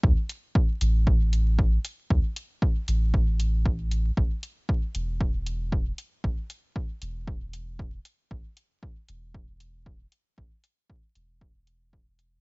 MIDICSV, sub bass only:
0, 0, Header, 1, 2, 480
1, 0, Start_track
1, 0, Tempo, 517241
1, 31, Time_signature, 4, 2, 24, 8
1, 11513, End_track
2, 0, Start_track
2, 0, Title_t, "Sub bass"
2, 0, Program_c, 0, 38
2, 32, Note_on_c, 0, 38, 103
2, 116, Note_off_c, 0, 38, 0
2, 752, Note_on_c, 0, 33, 93
2, 1653, Note_off_c, 0, 33, 0
2, 1953, Note_on_c, 0, 38, 99
2, 2036, Note_off_c, 0, 38, 0
2, 2672, Note_on_c, 0, 33, 89
2, 3387, Note_off_c, 0, 33, 0
2, 3393, Note_on_c, 0, 33, 82
2, 3813, Note_off_c, 0, 33, 0
2, 3872, Note_on_c, 0, 33, 94
2, 3956, Note_off_c, 0, 33, 0
2, 4592, Note_on_c, 0, 28, 89
2, 5493, Note_off_c, 0, 28, 0
2, 5791, Note_on_c, 0, 33, 97
2, 5876, Note_off_c, 0, 33, 0
2, 6511, Note_on_c, 0, 28, 92
2, 7412, Note_off_c, 0, 28, 0
2, 7712, Note_on_c, 0, 33, 98
2, 7796, Note_off_c, 0, 33, 0
2, 8431, Note_on_c, 0, 28, 91
2, 9332, Note_off_c, 0, 28, 0
2, 9631, Note_on_c, 0, 33, 100
2, 9716, Note_off_c, 0, 33, 0
2, 10351, Note_on_c, 0, 28, 93
2, 11067, Note_off_c, 0, 28, 0
2, 11072, Note_on_c, 0, 28, 81
2, 11493, Note_off_c, 0, 28, 0
2, 11513, End_track
0, 0, End_of_file